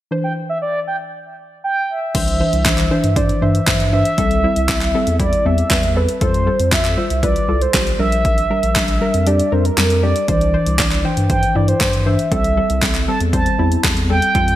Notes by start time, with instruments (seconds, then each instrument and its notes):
0.11 synth pluck E3 D4 C5
0.24 analog synth lead G5
0.49 analog synth lead E5
0.62 analog synth lead D5
0.87 analog synth lead G5
1.64 analog synth lead G5
1.90 soft synth lead E5
2.15 sub bass C2, synth pluck E3 D4 C5, kick, closed hi-hat, crash
2.28 closed hi-hat
2.40 synth pluck E3 D4 C5
2.53 sub bass C2, closed hi-hat
2.65 synth pluck E3 D4 C5, kick, snare, clap, closed hi-hat
2.78 clap, closed hi-hat
2.91 synth pluck E3 D4 C5
3.04 sub bass G2, closed hi-hat
3.16 synth pluck E3 D4 C5, soft synth lead D5, kick, closed hi-hat
3.29 closed hi-hat
3.42 sub bass G2, synth pluck E3 D4 C5, soft synth lead E5
3.55 closed hi-hat
3.67 sub bass G2, synth pluck E3 D4 C5, kick, snare, clap, closed hi-hat
3.80 closed hi-hat
3.93 synth pluck E3 D4 C5, soft synth lead E5
4.05 closed hi-hat
4.18 sub bass C2, synth pluck G3 C4 A4, kick, closed hi-hat
4.31 closed hi-hat
4.43 synth pluck G3 C4 E4
4.56 sub bass C2, closed hi-hat
4.69 synth pluck G3 C4 E4, kick, snare, clap, closed hi-hat
4.81 clap, closed hi-hat
4.95 synth pluck G3 C4 A4
5.07 sub bass E2, closed hi-hat
5.20 synth pluck G3 C4 E4, soft synth lead D5, kick, closed hi-hat
5.33 closed hi-hat
5.45 sub bass E2, synth pluck G3 C4 A4, soft synth lead E5
5.58 closed hi-hat
5.71 sub bass E2, synth pluck G3 C4 B4, kick, snare, clap, closed hi-hat
5.83 closed hi-hat
5.96 synth pluck G3 C4 A4, soft synth lead B4
6.09 closed hi-hat
6.21 sub bass F2, synth pluck G3 F4 A4, soft synth lead C5, kick, closed hi-hat
6.34 closed hi-hat
6.46 synth pluck G3 F4 A4
6.60 sub bass F2, closed hi-hat
6.72 synth pluck G3 F4 A4, soft synth lead E5, kick, snare, clap, closed hi-hat
6.85 clap, closed hi-hat
6.97 synth pluck G3 F4 C5
7.10 sub bass C2, closed hi-hat
7.23 synth pluck G3 F4 B4, soft synth lead D5, kick, closed hi-hat
7.36 closed hi-hat
7.48 sub bass C2, synth pluck G3 F4 A4
7.62 soft synth lead C5, closed hi-hat
7.74 sub bass B1, synth pluck G3 F4 G4, kick, snare, clap, closed hi-hat
7.87 closed hi-hat
7.99 sub bass A#1, synth pluck G3 D4 A#4, soft synth lead E5
8.12 closed hi-hat
8.25 kick, closed hi-hat
8.38 closed hi-hat
8.50 synth pluck G3 D4 A#4
8.63 sub bass A#1, closed hi-hat
8.75 synth pluck G3 D4 A#4, kick, snare, clap, closed hi-hat
8.88 closed hi-hat
9.01 synth pluck G3 D4 A#4
9.14 sub bass F2, closed hi-hat
9.26 synth pluck G3 D4 G4, soft synth lead D5, closed hi-hat
9.40 closed hi-hat
9.52 sub bass F2, synth pluck G3 D4 A#4, soft synth lead C5
9.65 soft synth lead A#4, closed hi-hat
9.77 sub bass F2, synth pluck G3 D4 A#4, snare, clap, closed hi-hat
9.90 closed hi-hat
10.03 synth pluck G3 D4 G4, soft synth lead D5
10.16 closed hi-hat
10.28 sub bass C2, synth pluck E3 D4 C5, soft synth lead D5, kick, closed hi-hat
10.41 closed hi-hat
10.53 synth pluck E3 D4 C5
10.66 sub bass C2, closed hi-hat
10.79 synth pluck E3 D4 D5, kick, snare, clap, closed hi-hat
10.91 clap, closed hi-hat
11.04 synth pluck E3 D4 C5, soft synth lead G5
11.17 sub bass G2, closed hi-hat
11.30 synth pluck E3 D4 C5, soft synth lead G5, kick, closed hi-hat
11.43 closed hi-hat
11.55 sub bass G2, synth pluck E3 D4 E4, soft synth lead D5
11.68 soft synth lead C5, closed hi-hat
11.80 sub bass G2, synth pluck E3 D4 C5, kick, snare, clap, closed hi-hat
11.93 closed hi-hat
12.06 synth pluck E3 D4 C5, soft synth lead E5
12.19 closed hi-hat
12.31 sub bass C2, synth pluck G3 C4 A4, soft synth lead E5, kick, closed hi-hat
12.44 closed hi-hat
12.57 synth pluck G3 C4 A4
12.70 sub bass C2, closed hi-hat
12.82 synth pluck G3 C4 A4, kick, snare, clap, closed hi-hat
12.95 clap, closed hi-hat
13.08 synth pluck G3 C4 A4, soft synth lead A5
13.20 sub bass E2, closed hi-hat
13.33 synth pluck G3 C4 C5, soft synth lead A5, kick, closed hi-hat
13.46 closed hi-hat
13.59 sub bass E2, synth pluck G3 C4 E4
13.72 closed hi-hat
13.84 sub bass E2, synth pluck G3 C4 A4, kick, snare, clap, closed hi-hat
13.97 closed hi-hat
14.10 synth pluck G3 C4 A4, soft synth lead G5
14.22 closed hi-hat
14.35 sub bass F2, synth pluck G3 F4 A4, kick, closed hi-hat
14.48 closed hi-hat